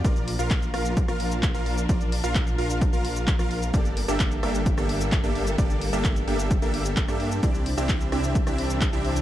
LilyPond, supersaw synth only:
\new Staff \with { instrumentName = "Supersaw synth" } { \time 4/4 \key bes \lydian \tempo 4 = 130 <f' bes' d''>8 r16 <f' bes' f''>8. <f' bes' f''>8. <f' bes' f''>4 <f' bes' f''>8. | <f' bes' d''>8 r16 <f' bes' f''>8. <f' bes' f''>8. <f' bes' f''>4 <f' bes' f''>8. | <bes d' g' a' d''>8 r16 <bes d' g' a' e''>8. <bes d' g' a' e''>8. <bes d' g' a' e''>4 <bes d' g' a' e''>8. | <bes d' g' a' d''>8 r16 <bes d' g' a' e''>8. <bes d' g' a' e''>8. <bes d' g' a' e''>4 <bes d' g' a' e''>8. |
<c' d' e' g' d''>8 r16 <c' d' e' g' e''>8. <c' d' e' g' e''>8. <c' d' e' g' e''>4 <c' d' e' g' e''>8. | }